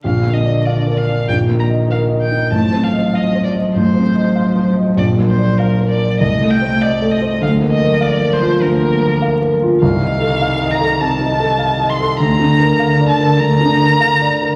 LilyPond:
<<
  \new Staff \with { instrumentName = "Violin" } { \time 4/4 \key bes \major \tempo 4 = 99 f''8 ees''8 d''8 f''8 g''8 bes''8 f''8 g''8 | a''8 f''8 ees''8 d''8 c''4. r8 | d''8 c''8 bes'8 d''8 ees''8 g''8 d''8 ees''8 | f''8 ees''8 d''8 c''8 bes'4. r8 |
f''4. bes''8 a''4. c'''8 | bes''4. a''8 bes''2 | }
  \new Staff \with { instrumentName = "Grand piano" } { \time 4/4 \key bes \major \tuplet 3/2 { bes,,8 bes8 d''8 f''8 bes'8 d''8 bes,,8 bes8 ees''8 bes'8 ees''8 ees'8 } | \tuplet 3/2 { a,,8 c'8 ees''8 f''8 c''8 ees''8 a,,8 c'8 ees''8 f''8 c''8 ees''8 } | \tuplet 3/2 { bes,,8 bes8 d''8 f''8 bes'8 d''8 c,8 a8 c''8 ees''8 a'8 c''8 } | \tuplet 3/2 { d,8 bes8 bes'8 f''8 bes'8 f'8 d,8 bes8 bes'8 f''8 bes'8 f'8 } |
\tuplet 3/2 { c,8 ees'8 a'8 f''8 ees''8 a'8 c8 ees'8 a'8 f''8 ees''8 a'8 } | \tuplet 3/2 { d,8 d'8 bes'8 f''8 d''8 bes'8 d,8 d'8 bes'8 f''8 d''8 bes'8 } | }
  \new Staff \with { instrumentName = "Cello" } { \clef bass \time 4/4 \key bes \major d2 ees2 | f1~ | f2 a2 | f1 |
ees1 | d1 | }
>>